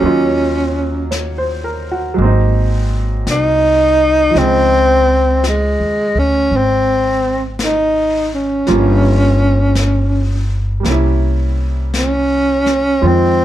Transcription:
Already playing: tenor saxophone C#4
0.01 upright bass D#2, grand piano F#3 A#3 C#4 D#4, brush sweep
0.06 grand piano F4
1.11 grand piano C#5, brush sweep, snare, hi-hat pedal
1.38 grand piano C5
1.64 grand piano A#4
1.91 grand piano F#4
2.14 grand piano F#3 G#3
2.18 upright bass G#1, grand piano A#3 C4, brush sweep
2.25 grand piano D#4
3.27 upright bass C2, tenor saxophone D#4, brush sweep, snare, hi-hat pedal
4.31 upright bass C#2, grand piano F3 G#3
4.36 grand piano C#3 C5, tenor saxophone C4, brush sweep, snare
4.41 grand piano D#4
5.44 brush sweep, snare, hi-hat pedal
5.48 tenor saxophone G#3
5.80 upright bass D#2
6.15 upright bass D2
6.19 tenor saxophone C#4
6.51 upright bass G#1, brush sweep
6.57 tenor saxophone C4
7.59 brush sweep, snare, hi-hat pedal
7.64 tenor saxophone D#4
8.35 tenor saxophone C#4
8.67 upright bass G1, grand piano F3 G3 A#3 C#4 F4, brush sweep, snare
9.75 brush sweep, snare, hi-hat pedal
10.80 grand piano G3 A#3
10.84 upright bass C2, grand piano C3 C#4, brush sweep, snare
10.91 grand piano E4
11.94 tenor saxophone C#4, brush sweep, snare, hi-hat pedal
12.66 snare
13.01 upright bass F2, grand piano D#3 F3 G#3 C4 F4, brush sweep
13.07 tenor saxophone C4

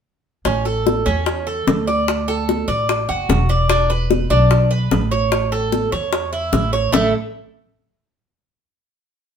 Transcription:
0.45 upright bass A1, cuban tres C#4, high bongo
0.65 cuban tres A4, high bongo
0.87 high bongo
1.06 upright bass E2, cuban tres C#4, high bongo
1.26 high bongo
1.47 cuban tres A4
1.67 upright bass D2, high bongo, low bongo
1.87 cuban tres D5, high bongo
2.08 high bongo
2.28 cuban tres A4, high bongo
2.49 high bongo
2.68 upright bass A1, cuban tres D5, high bongo
2.89 high bongo
3.09 upright bass F#1, cuban tres F#4
3.29 upright bass E1, high bongo, low bongo
3.49 cuban tres D5, high bongo
3.70 cuban tres D4, high bongo
3.90 cuban tres B4, high bongo
4.10 high bongo
4.30 upright bass B1, cuban tres D4, high bongo
4.51 high bongo
4.71 cuban tres B4
4.91 upright bass A1, high bongo, low bongo
5.11 cuban tres C#5, high bongo
5.32 high bongo
5.52 cuban tres A4, high bongo
5.72 high bongo
5.92 upright bass E2, cuban tres C#5, high bongo
6.13 high bongo
6.33 cuban tres E4
6.53 upright bass A1, high bongo, low bongo
6.73 cuban tres C#5, high bongo
6.92 upright bass A1, cuban tres A3 E4 A4, low bongo

